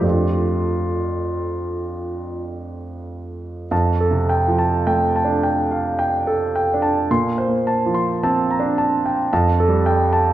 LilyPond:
<<
  \new Staff \with { instrumentName = "Grand piano" } { \time 3/4 \key f \major \tempo 4 = 53 r2. | a''16 a'16 g''16 a''16 g''16 a''16 g''16 f''16 g''16 a'16 g''16 a''16 | c'''16 c''16 a''16 c'''16 a''16 bes''16 a''16 g''16 a''16 a'16 g''16 a''16 | }
  \new Staff \with { instrumentName = "Grand piano" } { \clef bass \time 3/4 \key f \major <f, f a d' g'>2. | \tuplet 3/2 { f,8 c8 f8 a8 d'4 r4 d'8 } | \tuplet 3/2 { bes,8 bes8 f8 c'8 d'4 f,8 g4 } | }
  \new Staff \with { instrumentName = "Clarinet" } { \time 3/4 \key f \major f'2 r4 | r2. | r2. | }
>>